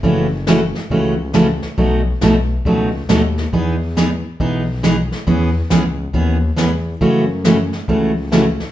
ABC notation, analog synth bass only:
X:1
M:4/4
L:1/8
Q:"Swing" 1/4=138
K:F#dor
V:1 name="Analog synth bass" clef=bass
F,,,4 C,,4 | B,,,2 B,,,2 C,,2 D,,2 | E,,4 B,,,4 | E,,2 C,,2 D,,2 E,,2 |
F,,4 C,,4 |]